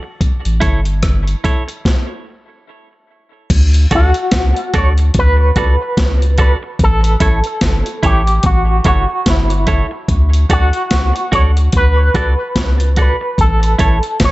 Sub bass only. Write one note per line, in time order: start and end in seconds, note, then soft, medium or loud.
0.46 0.61 A1 loud
0.62 1.35 G1 medium
3.50 3.87 D2 loud
3.91 4.13 D2 loud
4.33 4.54 C#2 loud
4.74 5.11 D2 loud
5.15 5.51 D2 loud
5.56 5.77 C#2 loud
5.98 6.55 C#2 medium
6.80 7.16 A1 loud
7.21 7.42 A1 loud
7.62 7.83 G1 loud
8.03 8.40 A1 medium
8.44 8.80 A1 loud
8.85 9.06 G1 loud
9.26 9.84 G1 loud
10.09 10.45 D2 loud
10.50 10.71 D2 loud
10.91 11.13 C#2 medium
11.33 11.69 D2 loud
11.74 12.10 D2 loud
12.15 12.36 C#2 loud
12.56 13.14 C#2 medium
13.39 13.75 A1 loud
13.79 14.01 A1 loud
14.21 14.32 G1 loud